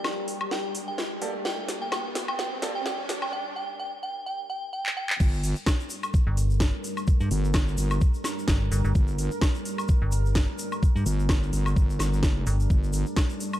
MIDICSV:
0, 0, Header, 1, 8, 480
1, 0, Start_track
1, 0, Key_signature, -2, "minor"
1, 0, Tempo, 468750
1, 1486, Time_signature, 4, 2, 24, 8
1, 13923, End_track
2, 0, Start_track
2, 0, Title_t, "Synth bell"
2, 0, Program_c, 0, 98
2, 526, Note_on_c, 0, 79, 88
2, 693, Note_off_c, 0, 79, 0
2, 899, Note_on_c, 0, 79, 86
2, 1049, Note_off_c, 0, 79, 0
2, 1485, Note_on_c, 0, 79, 89
2, 1653, Note_off_c, 0, 79, 0
2, 1859, Note_on_c, 0, 79, 94
2, 1949, Note_off_c, 0, 79, 0
2, 1965, Note_on_c, 0, 79, 88
2, 2133, Note_off_c, 0, 79, 0
2, 2338, Note_on_c, 0, 79, 86
2, 2428, Note_off_c, 0, 79, 0
2, 2444, Note_on_c, 0, 79, 92
2, 2612, Note_off_c, 0, 79, 0
2, 2818, Note_on_c, 0, 79, 93
2, 2908, Note_off_c, 0, 79, 0
2, 2926, Note_on_c, 0, 79, 91
2, 3093, Note_off_c, 0, 79, 0
2, 3300, Note_on_c, 0, 79, 93
2, 3390, Note_off_c, 0, 79, 0
2, 3406, Note_on_c, 0, 79, 94
2, 3573, Note_off_c, 0, 79, 0
2, 3646, Note_on_c, 0, 79, 94
2, 3813, Note_off_c, 0, 79, 0
2, 3886, Note_on_c, 0, 79, 91
2, 4053, Note_off_c, 0, 79, 0
2, 4125, Note_on_c, 0, 79, 95
2, 4293, Note_off_c, 0, 79, 0
2, 4366, Note_on_c, 0, 79, 93
2, 4533, Note_off_c, 0, 79, 0
2, 4604, Note_on_c, 0, 79, 91
2, 4772, Note_off_c, 0, 79, 0
2, 4843, Note_on_c, 0, 79, 102
2, 5012, Note_off_c, 0, 79, 0
2, 5087, Note_on_c, 0, 79, 95
2, 5253, Note_off_c, 0, 79, 0
2, 13923, End_track
3, 0, Start_track
3, 0, Title_t, "Grand piano"
3, 0, Program_c, 1, 0
3, 1245, Note_on_c, 1, 58, 91
3, 1245, Note_on_c, 1, 69, 84
3, 1246, Note_on_c, 1, 67, 85
3, 1246, Note_on_c, 1, 74, 106
3, 1331, Note_off_c, 1, 58, 0
3, 1331, Note_off_c, 1, 67, 0
3, 1331, Note_off_c, 1, 69, 0
3, 1331, Note_off_c, 1, 74, 0
3, 2685, Note_on_c, 1, 58, 86
3, 2685, Note_on_c, 1, 67, 76
3, 2685, Note_on_c, 1, 69, 82
3, 2685, Note_on_c, 1, 74, 94
3, 2771, Note_off_c, 1, 58, 0
3, 2771, Note_off_c, 1, 67, 0
3, 2771, Note_off_c, 1, 69, 0
3, 2771, Note_off_c, 1, 74, 0
3, 13923, End_track
4, 0, Start_track
4, 0, Title_t, "Ambient pad"
4, 0, Program_c, 2, 92
4, 0, Note_on_c, 2, 55, 78
4, 0, Note_on_c, 2, 62, 71
4, 0, Note_on_c, 2, 67, 71
4, 0, Note_on_c, 2, 70, 83
4, 3364, Note_off_c, 2, 55, 0
4, 3364, Note_off_c, 2, 62, 0
4, 3364, Note_off_c, 2, 67, 0
4, 3364, Note_off_c, 2, 70, 0
4, 5325, Note_on_c, 2, 69, 77
4, 5325, Note_on_c, 2, 70, 89
4, 5326, Note_on_c, 2, 55, 77
4, 5326, Note_on_c, 2, 62, 75
4, 12991, Note_off_c, 2, 70, 0
4, 13006, Note_on_c, 2, 74, 94
4, 13923, Note_off_c, 2, 55, 0
4, 13923, Note_off_c, 2, 62, 0
4, 13923, Note_off_c, 2, 69, 0
4, 13923, Note_off_c, 2, 74, 0
4, 13923, End_track
5, 0, Start_track
5, 0, Title_t, "FM bass"
5, 0, Program_c, 3, 39
5, 6418, Note_on_c, 3, 31, 96
5, 6877, Note_off_c, 3, 31, 0
5, 7378, Note_on_c, 3, 43, 98
5, 7468, Note_off_c, 3, 43, 0
5, 8687, Note_on_c, 3, 31, 96
5, 8909, Note_off_c, 3, 31, 0
5, 8925, Note_on_c, 3, 31, 97
5, 9037, Note_off_c, 3, 31, 0
5, 9058, Note_on_c, 3, 31, 97
5, 9148, Note_off_c, 3, 31, 0
5, 10258, Note_on_c, 3, 31, 99
5, 10717, Note_off_c, 3, 31, 0
5, 11219, Note_on_c, 3, 43, 97
5, 11309, Note_off_c, 3, 43, 0
5, 12766, Note_on_c, 3, 31, 93
5, 12989, Note_off_c, 3, 31, 0
5, 13923, End_track
6, 0, Start_track
6, 0, Title_t, "Wobble bass"
6, 0, Program_c, 4, 39
6, 5327, Note_on_c, 4, 31, 96
6, 5678, Note_off_c, 4, 31, 0
6, 7486, Note_on_c, 4, 31, 98
6, 7949, Note_off_c, 4, 31, 0
6, 7965, Note_on_c, 4, 31, 100
6, 8188, Note_off_c, 4, 31, 0
6, 9167, Note_on_c, 4, 31, 94
6, 9518, Note_off_c, 4, 31, 0
6, 11326, Note_on_c, 4, 31, 93
6, 11789, Note_off_c, 4, 31, 0
6, 11806, Note_on_c, 4, 31, 98
6, 12029, Note_off_c, 4, 31, 0
6, 12047, Note_on_c, 4, 31, 94
6, 12269, Note_off_c, 4, 31, 0
6, 12286, Note_on_c, 4, 31, 94
6, 12749, Note_off_c, 4, 31, 0
6, 13007, Note_on_c, 4, 31, 98
6, 13358, Note_off_c, 4, 31, 0
6, 13923, End_track
7, 0, Start_track
7, 0, Title_t, "Riser"
7, 0, Program_c, 5, 103
7, 0, Note_on_c, 5, 60, 74
7, 3406, Note_off_c, 5, 60, 0
7, 13923, End_track
8, 0, Start_track
8, 0, Title_t, "Drums"
8, 45, Note_on_c, 9, 38, 65
8, 45, Note_on_c, 9, 76, 80
8, 148, Note_off_c, 9, 38, 0
8, 148, Note_off_c, 9, 76, 0
8, 285, Note_on_c, 9, 46, 89
8, 387, Note_off_c, 9, 46, 0
8, 418, Note_on_c, 9, 76, 74
8, 520, Note_off_c, 9, 76, 0
8, 525, Note_on_c, 9, 38, 67
8, 627, Note_off_c, 9, 38, 0
8, 765, Note_on_c, 9, 46, 102
8, 867, Note_off_c, 9, 46, 0
8, 1005, Note_on_c, 9, 38, 69
8, 1107, Note_off_c, 9, 38, 0
8, 1245, Note_on_c, 9, 46, 86
8, 1347, Note_off_c, 9, 46, 0
8, 1485, Note_on_c, 9, 38, 74
8, 1588, Note_off_c, 9, 38, 0
8, 1725, Note_on_c, 9, 38, 75
8, 1725, Note_on_c, 9, 46, 101
8, 1828, Note_off_c, 9, 38, 0
8, 1828, Note_off_c, 9, 46, 0
8, 1965, Note_on_c, 9, 38, 81
8, 1965, Note_on_c, 9, 76, 87
8, 2068, Note_off_c, 9, 38, 0
8, 2068, Note_off_c, 9, 76, 0
8, 2205, Note_on_c, 9, 38, 88
8, 2205, Note_on_c, 9, 46, 91
8, 2307, Note_off_c, 9, 38, 0
8, 2307, Note_off_c, 9, 46, 0
8, 2338, Note_on_c, 9, 76, 78
8, 2440, Note_off_c, 9, 76, 0
8, 2445, Note_on_c, 9, 38, 82
8, 2548, Note_off_c, 9, 38, 0
8, 2685, Note_on_c, 9, 38, 84
8, 2685, Note_on_c, 9, 46, 99
8, 2787, Note_off_c, 9, 38, 0
8, 2787, Note_off_c, 9, 46, 0
8, 2925, Note_on_c, 9, 38, 89
8, 3028, Note_off_c, 9, 38, 0
8, 3165, Note_on_c, 9, 38, 88
8, 3165, Note_on_c, 9, 46, 92
8, 3268, Note_off_c, 9, 38, 0
8, 3268, Note_off_c, 9, 46, 0
8, 3298, Note_on_c, 9, 76, 67
8, 3400, Note_off_c, 9, 76, 0
8, 4979, Note_on_c, 9, 39, 73
8, 5081, Note_off_c, 9, 39, 0
8, 5219, Note_on_c, 9, 39, 99
8, 5321, Note_off_c, 9, 39, 0
8, 5326, Note_on_c, 9, 36, 120
8, 5326, Note_on_c, 9, 49, 107
8, 5328, Note_on_c, 9, 82, 51
8, 5428, Note_off_c, 9, 49, 0
8, 5429, Note_off_c, 9, 36, 0
8, 5431, Note_off_c, 9, 82, 0
8, 5462, Note_on_c, 9, 82, 34
8, 5565, Note_off_c, 9, 82, 0
8, 5566, Note_on_c, 9, 46, 108
8, 5569, Note_on_c, 9, 82, 85
8, 5668, Note_off_c, 9, 46, 0
8, 5672, Note_off_c, 9, 82, 0
8, 5691, Note_on_c, 9, 82, 38
8, 5794, Note_off_c, 9, 82, 0
8, 5800, Note_on_c, 9, 38, 127
8, 5806, Note_on_c, 9, 36, 107
8, 5806, Note_on_c, 9, 76, 85
8, 5809, Note_on_c, 9, 82, 53
8, 5903, Note_off_c, 9, 38, 0
8, 5908, Note_off_c, 9, 76, 0
8, 5909, Note_off_c, 9, 36, 0
8, 5912, Note_off_c, 9, 82, 0
8, 5942, Note_on_c, 9, 82, 34
8, 6039, Note_off_c, 9, 82, 0
8, 6039, Note_on_c, 9, 82, 92
8, 6046, Note_on_c, 9, 46, 100
8, 6141, Note_off_c, 9, 82, 0
8, 6148, Note_off_c, 9, 46, 0
8, 6176, Note_on_c, 9, 82, 43
8, 6178, Note_on_c, 9, 76, 81
8, 6278, Note_off_c, 9, 82, 0
8, 6280, Note_off_c, 9, 76, 0
8, 6286, Note_on_c, 9, 36, 115
8, 6287, Note_on_c, 9, 82, 58
8, 6389, Note_off_c, 9, 36, 0
8, 6390, Note_off_c, 9, 82, 0
8, 6525, Note_on_c, 9, 46, 107
8, 6530, Note_on_c, 9, 82, 96
8, 6627, Note_off_c, 9, 46, 0
8, 6632, Note_off_c, 9, 82, 0
8, 6658, Note_on_c, 9, 82, 39
8, 6760, Note_on_c, 9, 38, 123
8, 6761, Note_off_c, 9, 82, 0
8, 6763, Note_on_c, 9, 82, 50
8, 6767, Note_on_c, 9, 36, 101
8, 6862, Note_off_c, 9, 38, 0
8, 6865, Note_off_c, 9, 82, 0
8, 6869, Note_off_c, 9, 36, 0
8, 7005, Note_on_c, 9, 46, 92
8, 7008, Note_on_c, 9, 82, 96
8, 7108, Note_off_c, 9, 46, 0
8, 7110, Note_off_c, 9, 82, 0
8, 7138, Note_on_c, 9, 76, 64
8, 7139, Note_on_c, 9, 82, 37
8, 7241, Note_off_c, 9, 76, 0
8, 7242, Note_off_c, 9, 82, 0
8, 7242, Note_on_c, 9, 82, 58
8, 7246, Note_on_c, 9, 36, 126
8, 7345, Note_off_c, 9, 82, 0
8, 7349, Note_off_c, 9, 36, 0
8, 7378, Note_on_c, 9, 82, 37
8, 7480, Note_off_c, 9, 82, 0
8, 7485, Note_on_c, 9, 46, 112
8, 7489, Note_on_c, 9, 82, 88
8, 7587, Note_off_c, 9, 46, 0
8, 7591, Note_off_c, 9, 82, 0
8, 7624, Note_on_c, 9, 82, 41
8, 7718, Note_off_c, 9, 82, 0
8, 7718, Note_on_c, 9, 82, 58
8, 7720, Note_on_c, 9, 38, 127
8, 7725, Note_on_c, 9, 76, 84
8, 7726, Note_on_c, 9, 36, 110
8, 7820, Note_off_c, 9, 82, 0
8, 7822, Note_off_c, 9, 38, 0
8, 7828, Note_off_c, 9, 76, 0
8, 7829, Note_off_c, 9, 36, 0
8, 7865, Note_on_c, 9, 82, 37
8, 7963, Note_off_c, 9, 82, 0
8, 7963, Note_on_c, 9, 82, 106
8, 7966, Note_on_c, 9, 46, 102
8, 8065, Note_off_c, 9, 82, 0
8, 8068, Note_off_c, 9, 46, 0
8, 8095, Note_on_c, 9, 82, 41
8, 8099, Note_on_c, 9, 76, 78
8, 8198, Note_off_c, 9, 82, 0
8, 8201, Note_off_c, 9, 76, 0
8, 8202, Note_on_c, 9, 82, 52
8, 8207, Note_on_c, 9, 36, 123
8, 8305, Note_off_c, 9, 82, 0
8, 8309, Note_off_c, 9, 36, 0
8, 8335, Note_on_c, 9, 82, 42
8, 8438, Note_off_c, 9, 82, 0
8, 8440, Note_on_c, 9, 38, 65
8, 8445, Note_on_c, 9, 46, 105
8, 8445, Note_on_c, 9, 76, 61
8, 8447, Note_on_c, 9, 82, 93
8, 8542, Note_off_c, 9, 38, 0
8, 8548, Note_off_c, 9, 46, 0
8, 8548, Note_off_c, 9, 76, 0
8, 8549, Note_off_c, 9, 82, 0
8, 8590, Note_on_c, 9, 82, 44
8, 8680, Note_on_c, 9, 38, 125
8, 8686, Note_on_c, 9, 36, 112
8, 8689, Note_off_c, 9, 82, 0
8, 8689, Note_on_c, 9, 82, 58
8, 8782, Note_off_c, 9, 38, 0
8, 8789, Note_off_c, 9, 36, 0
8, 8791, Note_off_c, 9, 82, 0
8, 8926, Note_on_c, 9, 46, 94
8, 8931, Note_on_c, 9, 82, 109
8, 9028, Note_off_c, 9, 46, 0
8, 9033, Note_off_c, 9, 82, 0
8, 9057, Note_on_c, 9, 82, 44
8, 9160, Note_off_c, 9, 82, 0
8, 9165, Note_on_c, 9, 82, 50
8, 9167, Note_on_c, 9, 36, 127
8, 9268, Note_off_c, 9, 82, 0
8, 9269, Note_off_c, 9, 36, 0
8, 9294, Note_on_c, 9, 82, 40
8, 9397, Note_off_c, 9, 82, 0
8, 9405, Note_on_c, 9, 46, 114
8, 9408, Note_on_c, 9, 82, 90
8, 9507, Note_off_c, 9, 46, 0
8, 9510, Note_off_c, 9, 82, 0
8, 9536, Note_on_c, 9, 82, 44
8, 9638, Note_off_c, 9, 82, 0
8, 9640, Note_on_c, 9, 38, 127
8, 9646, Note_on_c, 9, 36, 117
8, 9646, Note_on_c, 9, 76, 80
8, 9648, Note_on_c, 9, 82, 57
8, 9743, Note_off_c, 9, 38, 0
8, 9748, Note_off_c, 9, 76, 0
8, 9749, Note_off_c, 9, 36, 0
8, 9751, Note_off_c, 9, 82, 0
8, 9778, Note_on_c, 9, 82, 36
8, 9880, Note_off_c, 9, 82, 0
8, 9886, Note_on_c, 9, 46, 106
8, 9888, Note_on_c, 9, 82, 90
8, 9988, Note_off_c, 9, 46, 0
8, 9991, Note_off_c, 9, 82, 0
8, 10018, Note_on_c, 9, 76, 76
8, 10024, Note_on_c, 9, 82, 40
8, 10120, Note_off_c, 9, 82, 0
8, 10120, Note_on_c, 9, 82, 61
8, 10121, Note_off_c, 9, 76, 0
8, 10127, Note_on_c, 9, 36, 126
8, 10222, Note_off_c, 9, 82, 0
8, 10229, Note_off_c, 9, 36, 0
8, 10360, Note_on_c, 9, 82, 106
8, 10366, Note_on_c, 9, 46, 114
8, 10462, Note_off_c, 9, 82, 0
8, 10468, Note_off_c, 9, 46, 0
8, 10503, Note_on_c, 9, 82, 44
8, 10600, Note_off_c, 9, 82, 0
8, 10600, Note_on_c, 9, 38, 123
8, 10600, Note_on_c, 9, 82, 51
8, 10606, Note_on_c, 9, 36, 109
8, 10702, Note_off_c, 9, 82, 0
8, 10703, Note_off_c, 9, 38, 0
8, 10709, Note_off_c, 9, 36, 0
8, 10839, Note_on_c, 9, 82, 96
8, 10846, Note_on_c, 9, 46, 101
8, 10942, Note_off_c, 9, 82, 0
8, 10948, Note_off_c, 9, 46, 0
8, 10976, Note_on_c, 9, 82, 41
8, 10979, Note_on_c, 9, 76, 62
8, 11079, Note_off_c, 9, 82, 0
8, 11081, Note_off_c, 9, 76, 0
8, 11086, Note_on_c, 9, 36, 124
8, 11090, Note_on_c, 9, 82, 58
8, 11189, Note_off_c, 9, 36, 0
8, 11192, Note_off_c, 9, 82, 0
8, 11223, Note_on_c, 9, 82, 41
8, 11325, Note_off_c, 9, 82, 0
8, 11326, Note_on_c, 9, 46, 110
8, 11328, Note_on_c, 9, 82, 107
8, 11428, Note_off_c, 9, 46, 0
8, 11431, Note_off_c, 9, 82, 0
8, 11463, Note_on_c, 9, 82, 44
8, 11561, Note_on_c, 9, 38, 126
8, 11566, Note_off_c, 9, 82, 0
8, 11566, Note_on_c, 9, 36, 115
8, 11566, Note_on_c, 9, 76, 78
8, 11569, Note_on_c, 9, 82, 54
8, 11663, Note_off_c, 9, 38, 0
8, 11669, Note_off_c, 9, 36, 0
8, 11669, Note_off_c, 9, 76, 0
8, 11671, Note_off_c, 9, 82, 0
8, 11703, Note_on_c, 9, 82, 34
8, 11805, Note_off_c, 9, 82, 0
8, 11806, Note_on_c, 9, 46, 98
8, 11808, Note_on_c, 9, 82, 98
8, 11908, Note_off_c, 9, 46, 0
8, 11911, Note_off_c, 9, 82, 0
8, 11939, Note_on_c, 9, 76, 73
8, 11946, Note_on_c, 9, 82, 45
8, 12042, Note_off_c, 9, 76, 0
8, 12047, Note_on_c, 9, 36, 124
8, 12048, Note_off_c, 9, 82, 0
8, 12050, Note_on_c, 9, 82, 56
8, 12149, Note_off_c, 9, 36, 0
8, 12153, Note_off_c, 9, 82, 0
8, 12186, Note_on_c, 9, 82, 42
8, 12281, Note_on_c, 9, 38, 60
8, 12287, Note_on_c, 9, 46, 110
8, 12287, Note_on_c, 9, 76, 57
8, 12288, Note_off_c, 9, 82, 0
8, 12297, Note_on_c, 9, 82, 98
8, 12383, Note_off_c, 9, 38, 0
8, 12389, Note_off_c, 9, 46, 0
8, 12389, Note_off_c, 9, 76, 0
8, 12399, Note_off_c, 9, 82, 0
8, 12424, Note_on_c, 9, 82, 44
8, 12521, Note_on_c, 9, 38, 111
8, 12526, Note_off_c, 9, 82, 0
8, 12526, Note_on_c, 9, 36, 113
8, 12528, Note_on_c, 9, 82, 55
8, 12623, Note_off_c, 9, 38, 0
8, 12629, Note_off_c, 9, 36, 0
8, 12630, Note_off_c, 9, 82, 0
8, 12766, Note_on_c, 9, 46, 95
8, 12766, Note_on_c, 9, 82, 89
8, 12869, Note_off_c, 9, 46, 0
8, 12869, Note_off_c, 9, 82, 0
8, 12903, Note_on_c, 9, 82, 44
8, 13005, Note_off_c, 9, 82, 0
8, 13007, Note_on_c, 9, 36, 122
8, 13008, Note_on_c, 9, 82, 51
8, 13109, Note_off_c, 9, 36, 0
8, 13110, Note_off_c, 9, 82, 0
8, 13145, Note_on_c, 9, 82, 37
8, 13240, Note_off_c, 9, 82, 0
8, 13240, Note_on_c, 9, 82, 88
8, 13246, Note_on_c, 9, 46, 109
8, 13342, Note_off_c, 9, 82, 0
8, 13349, Note_off_c, 9, 46, 0
8, 13377, Note_on_c, 9, 82, 40
8, 13479, Note_off_c, 9, 82, 0
8, 13480, Note_on_c, 9, 38, 118
8, 13485, Note_on_c, 9, 82, 57
8, 13486, Note_on_c, 9, 76, 80
8, 13487, Note_on_c, 9, 36, 105
8, 13583, Note_off_c, 9, 38, 0
8, 13587, Note_off_c, 9, 82, 0
8, 13588, Note_off_c, 9, 76, 0
8, 13589, Note_off_c, 9, 36, 0
8, 13616, Note_on_c, 9, 82, 38
8, 13718, Note_off_c, 9, 82, 0
8, 13726, Note_on_c, 9, 46, 99
8, 13726, Note_on_c, 9, 82, 101
8, 13828, Note_off_c, 9, 46, 0
8, 13828, Note_off_c, 9, 82, 0
8, 13856, Note_on_c, 9, 82, 40
8, 13859, Note_on_c, 9, 76, 75
8, 13923, Note_off_c, 9, 76, 0
8, 13923, Note_off_c, 9, 82, 0
8, 13923, End_track
0, 0, End_of_file